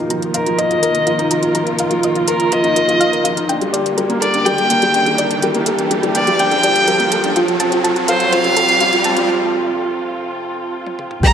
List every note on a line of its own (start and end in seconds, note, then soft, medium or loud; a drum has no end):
0.00 3.50 D#3 medium
0.00 0.10 F3 medium
0.00 7.36 A#3 medium
0.00 0.34 D#4 medium
0.00 0.58 F4 medium
0.00 0.53 G4 medium
0.00 3.50 A#4 medium
0.00 riser medium
0.10 0.22 F3 medium
0.10 0.16 A#5 medium
0.10 closed hi-hat soft
0.16 4.97 F4 medium
0.22 closed hi-hat soft
0.34 0.46 D#4 medium
0.34 0.60 A#4 medium
0.34 0.40 F5 medium
0.34 closed hi-hat medium
0.46 0.54 F3 medium
0.46 closed hi-hat soft
0.58 0.70 F4 medium
0.58 0.64 D#5 medium
0.58 1.55 D#5 loud
0.58 closed hi-hat soft
0.70 0.82 F3 medium
0.70 closed hi-hat soft
0.82 0.91 A#4 medium
0.82 0.90 A#4 medium
0.82 closed hi-hat medium
0.95 closed hi-hat soft
1.06 1.14 F3 medium
1.06 1.13 F4 medium
1.06 closed hi-hat soft
1.18 1.30 D#4 medium
1.18 closed hi-hat soft
1.31 1.43 F3 medium
1.31 1.40 A#5 medium
1.31 closed hi-hat medium
1.42 1.54 F4 medium
1.42 closed hi-hat soft
1.54 1.67 F3 medium
1.54 1.61 A#5 medium
1.54 closed hi-hat soft
1.67 closed hi-hat soft
1.79 1.91 D#4 medium
1.79 1.85 F5 medium
1.79 closed hi-hat medium
1.91 1.98 F3 medium
1.91 closed hi-hat soft
2.03 2.15 F4 medium
2.03 2.10 D#5 medium
2.03 closed hi-hat soft
2.15 2.27 F3 medium
2.15 closed hi-hat soft
2.27 2.35 A#4 medium
2.27 2.36 A#4 medium
2.27 2.54 A#4 medium
2.27 closed hi-hat medium
2.40 closed hi-hat soft
2.52 2.59 F3 medium
2.52 2.58 F4 medium
2.52 3.49 D#5 loud
2.52 closed hi-hat soft
2.64 2.76 D#4 medium
2.64 closed hi-hat soft
2.76 2.88 F4 medium
2.76 2.82 A#4 medium
2.76 closed hi-hat medium
2.88 2.99 F3 medium
2.88 2.97 F4 medium
2.88 closed hi-hat soft
3.00 3.12 F3 medium
3.00 3.09 F5 loud
3.00 closed hi-hat soft
3.12 3.24 A#4 medium
3.12 closed hi-hat soft
3.24 3.37 F3 medium
3.24 3.28 F5 medium
3.24 closed hi-hat medium
3.37 3.49 D#4 medium
3.37 closed hi-hat soft
3.49 7.37 D3 medium
3.49 3.61 D4 medium
3.49 3.55 G5 medium
3.49 closed hi-hat soft
3.61 3.73 G3 medium
3.61 closed hi-hat soft
3.73 3.80 G4 medium
3.73 3.79 D5 medium
3.73 closed hi-hat medium
3.86 closed hi-hat soft
3.97 4.05 G3 medium
3.97 4.03 A#4 medium
3.97 closed hi-hat soft
4.09 4.21 A#3 medium
4.09 closed hi-hat soft
4.21 4.30 A4 medium
4.21 4.47 D5 medium
4.21 closed hi-hat medium
4.31 4.45 D4 medium
4.31 8.31 G4 medium
4.31 closed hi-hat soft
4.46 4.57 G3 medium
4.46 4.51 G4 medium
4.46 5.43 G5 loud
4.46 closed hi-hat soft
4.58 4.70 G3 medium
4.58 closed hi-hat soft
4.63 11.24 A4 medium
4.70 4.82 A#3 medium
4.70 4.78 G5 medium
4.70 closed hi-hat medium
4.82 4.89 G3 medium
4.82 closed hi-hat soft
4.94 5.06 D4 medium
4.94 5.00 G5 medium
4.94 closed hi-hat soft
5.06 5.18 G3 medium
5.06 closed hi-hat soft
5.18 5.26 G4 medium
5.18 5.24 D5 medium
5.18 closed hi-hat medium
5.31 closed hi-hat soft
5.42 5.50 G3 medium
5.42 5.49 A#4 medium
5.42 closed hi-hat soft
5.54 5.66 A#3 loud
5.54 closed hi-hat soft
5.66 5.75 A4 medium
5.66 closed hi-hat medium
5.79 5.91 D4 medium
5.79 closed hi-hat soft
5.91 6.02 G3 medium
5.91 5.97 G4 medium
5.91 closed hi-hat soft
6.03 6.15 G3 medium
6.03 closed hi-hat soft
6.15 6.27 A#3 medium
6.15 6.41 D5 medium
6.15 6.24 G5 medium
6.15 closed hi-hat medium
6.27 6.35 G3 loud
6.27 closed hi-hat soft
6.39 6.51 D4 medium
6.39 6.45 G5 medium
6.39 7.37 G5 loud
6.39 closed hi-hat soft
6.51 6.63 G3 medium
6.51 closed hi-hat soft
6.63 6.71 G4 medium
6.63 6.69 D5 medium
6.63 closed hi-hat medium
6.76 closed hi-hat soft
6.88 6.95 G3 medium
6.88 6.93 A#4 medium
6.88 closed hi-hat soft
7.00 7.11 A#3 medium
7.00 closed hi-hat soft
7.12 7.20 A4 medium
7.12 closed hi-hat medium
7.24 7.36 D4 medium
7.24 closed hi-hat soft
7.36 11.24 C3 medium
7.36 7.47 F3 loud
7.36 7.42 F4 medium
7.36 closed hi-hat soft
7.48 7.60 F3 medium
7.48 closed hi-hat soft
7.60 7.72 C4 medium
7.60 7.69 A5 medium
7.60 closed hi-hat medium
7.65 11.33 F4 medium
7.72 7.80 F3 loud
7.72 closed hi-hat soft
7.84 7.96 F4 medium
7.84 7.90 A5 medium
7.84 closed hi-hat soft
7.96 8.08 F3 medium
7.96 closed hi-hat soft
8.08 8.16 A4 medium
8.08 8.34 C5 medium
8.08 8.14 F5 medium
8.08 closed hi-hat medium
8.20 closed hi-hat soft
8.33 8.40 F3 medium
8.33 8.38 C5 medium
8.33 9.30 F5 loud
8.33 closed hi-hat soft
8.44 8.56 C4 loud
8.44 closed hi-hat soft
8.57 8.65 A4 medium
8.57 closed hi-hat medium
8.69 8.81 F4 medium
8.69 closed hi-hat soft
8.80 8.91 F3 loud
8.80 8.87 F4 medium
8.80 closed hi-hat soft
8.93 9.05 F3 medium
8.93 closed hi-hat soft
9.04 9.17 C4 medium
9.04 9.14 A5 medium
9.04 closed hi-hat medium
9.17 9.24 F3 loud
9.17 closed hi-hat soft
10.86 high tom medium
10.99 mid tom medium
11.11 mid tom medium
11.23 11.33 D3 medium
11.23 11.33 G3 medium
11.23 11.29 G5 medium
11.23 11.33 A#5 loud
11.23 kick loud
11.23 closed hi-hat soft